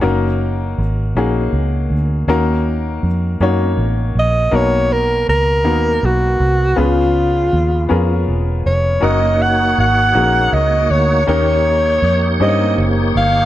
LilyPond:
<<
  \new Staff \with { instrumentName = "Alto saxophone" } { \time 6/8 \key fis \major \tempo 4. = 53 r2. | r2 r8 dis''8 | cis''8 ais'8 ais'4 fis'4 | eis'2 r8 cis''8 |
dis''8 fis''8 fis''4 dis''8 cis''8 | cis''4. dis''8 r8 eis''8 | }
  \new Staff \with { instrumentName = "Tonewheel organ" } { \time 6/8 \key fis \major r2. | r2. | r2. | r2. |
<ais dis' fis' cis''>2. | <ais dis' g' cis''>2. | }
  \new Staff \with { instrumentName = "Upright piano" } { \time 6/8 \key fis \major <ais cis' dis' fis' ais'>4 r8 <ais cis' dis' fis' gis'>4 r8 | <ais cis' dis' fis' ais'>4 r8 <ais cis' dis' fis' cis''>4 r8 | <ais b dis' fis' ais'>4 r8 <ais b dis' fis' ais'>4 r8 | <b cis' eis' gis' b'>4 r8 <b cis' eis' gis' ais'>4 r8 |
<ais cis' dis' fis' ais'>4 r8 <ais cis' dis' fis' gis' ais'>4 r8 | <ais cis' dis' g' ais'>4 r8 <ais cis' dis' g' bis' cis''>4 r8 | }
  \new Staff \with { instrumentName = "Upright piano" } { \clef bass \time 6/8 \key fis \major r2. | dis4. r4. | b,4. r4. | cis4. r4. |
r2. | dis4. r4. | }
  \new Staff \with { instrumentName = "Fingered electric bass" } { \clef bass \time 6/8 \key fis \major fis,,4 gis,,8 ais,,8 cis,8 d,8 | dis,4 eis,8 fis,8 a,,8 ais,,8 | b,,4 cis,8 dis,8 b,,8 bis,,8 | cis,4 dis,8 eis,8 e,,8 eis,,8 |
fis,,4 gis,,8 ais,,8 cis,8 d,8 | dis,4 eis,8 g,8 fis,,8 g,,8 | }
>>